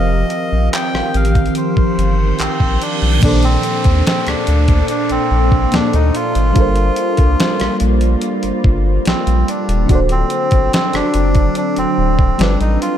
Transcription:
Already playing: F1 D#3 F3 C4 G4 A#4 D#5 F5
0.30 closed hi-hat
0.52 A#1
0.73 G5, clap, closed hi-hat
0.94 A1, cross-stick
1.14 A1 F5, closed hi-hat
1.25 closed hi-hat
1.35 kick, closed hi-hat
1.46 closed hi-hat
1.55 C5, closed hi-hat, reverse cymbal
1.77 G1, kick
1.98 G1, closed hi-hat
2.39 A#1 C4, clap, closed hi-hat
2.60 A#1, kick
2.81 D4, closed hi-hat
3.02 B1
3.19 A#1 A#2 A#3 D4 A4, kick, closed hi-hat, crash, downlifter
3.23 D4 A4
3.28 C5
3.43 C4, closed hi-hat
3.63 closed hi-hat
3.84 D#2, kick, closed hi-hat
4.07 C4, snare, closed hi-hat
4.27 D2 D4, cross-stick, closed hi-hat
4.47 D2, closed hi-hat
4.68 kick, closed hi-hat
4.88 D4, closed hi-hat
5.09 A#1 C4, closed hi-hat
5.31 A#1
5.52 kick
5.71 D2 A#2 A#3 D4 A4, snare, closed hi-hat
5.76 C5
5.82 D5
5.93 D2 D#4, closed hi-hat
6.15 F4, closed hi-hat
6.35 G#1, closed hi-hat
6.53 G1 G3 A#3 D4 F4, kick, closed hi-hat
6.58 A4 A#4 C5
6.76 closed hi-hat
6.96 closed hi-hat
7.17 C2, kick, closed hi-hat
7.40 snare, closed hi-hat
7.60 A#1, cross-stick, closed hi-hat
7.80 A#1, closed hi-hat
8.01 closed hi-hat
8.21 closed hi-hat
8.43 G1, closed hi-hat
8.64 G1, kick
9.05 A#1 C4, snare, closed hi-hat
9.27 A#1, closed hi-hat
9.48 D4, closed hi-hat
9.69 D#1, closed hi-hat
9.86 D1 D3 F#3 C4 D4, kick, closed hi-hat
9.90 D4 F#4 A4
9.95 C5
10.09 C4, closed hi-hat
10.30 closed hi-hat
10.51 G1, kick, closed hi-hat
10.73 C4, snare, closed hi-hat
10.93 F#1 D4, cross-stick, closed hi-hat
11.14 F#1, closed hi-hat
11.35 kick, closed hi-hat
11.55 D4, closed hi-hat
11.76 D1 C4, closed hi-hat
11.98 D1
12.19 kick
12.38 G1 G3 D4 F4 A4, snare, closed hi-hat
12.43 B4
12.61 A1 D#4, closed hi-hat
12.82 F4, closed hi-hat

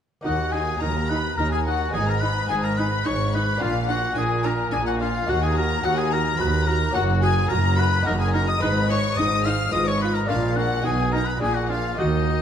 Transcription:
0.21 D#2 A#3 D#4 F#4 F#5
0.26 D#2 F#4
0.52 D#4 G#4 G#5
0.80 D#2 D#4 A#4 A#5
1.08 D#4 B4 B5
1.36 D#2 D#4 A#4 A#5
1.51 G#4 G#5
1.64 D#4 F#4 F#5
1.90 G#1 B3 D#4 G#4 G#5
1.94 G#2 D#4 G#4
2.06 A#4 A#5
2.19 D#4 B4 B5
2.48 G#1 G#2 D#4 G#4 G#5
2.63 A#4 A#5
2.75 D#4 B4 B5
3.04 G#1 G#2 D#4 C#5 C#6
3.31 D#4 B4 B5
3.56 A#3 D4 F4 F5
3.61 A#1 A#2 D4 F4
3.88 D4 F#4 F#5
4.14 A#1 A#2 D4 G#4 G#5
4.43 D4 A#4 A#5
4.71 A#1 A#2 D4 G#4 G#5
4.86 F#4 F#5
4.99 D4 F4 F5
5.25 D#2 A#3 D#4 F#4 F#5
5.29 F#4
5.41 G#4 G#5
5.55 F#4 A#4 A#5
5.82 D#2 F#4 F#5
5.96 G#4 G#5
6.11 F#4 A#4 A#5
6.38 D#2 F#4 B4 B5
6.65 F#4 A#4 A#5
6.90 F#1 A#3 C#4 F#4 F#5
6.95 F#2 F#4 F#5
7.21 F#4 G#4 G#5
7.48 F#1 F#2 F#4 A#4 A#5
7.76 F#4 B4 B5
8.01 A#3 D#4 F#4 A#5
8.05 F#1 F#2 D#4 A#4
8.19 G#4 G#5
8.32 D#4 A#4 A#5
8.48 D#5 D#6
8.58 G#1 G#3 D#4 B4 B5
8.62 G#2 D#4 B4 B5
8.89 D#4 C#5 C#6
9.17 G#1 G#2 D#4 D#5 D#6
9.44 D#4 F5 F6
9.69 G#1 G#3 F4 B4 D#5 D#6
9.73 G#2 F4 D#6
9.87 C#5 C#6
10.01 F4 B4 B5
10.14 A#4 A#5
10.25 A#1 G#3 D4 F4 A#4 F5
10.30 A#2
10.55 D4 F#4 F#5
10.82 B1 B2 D#4 F#4 G#4 G#5
11.12 D#4 A#4 A#5
11.25 B4 B5
11.29 B5
11.37 A#1 A#3 D4 G#4 G#5
11.42 A#2 G#5
11.53 F#4 F#5
11.68 D4 F4 F5
11.95 D#2 A#3 D#4 F#4 D#5
11.99 D#3
12.29 F#4

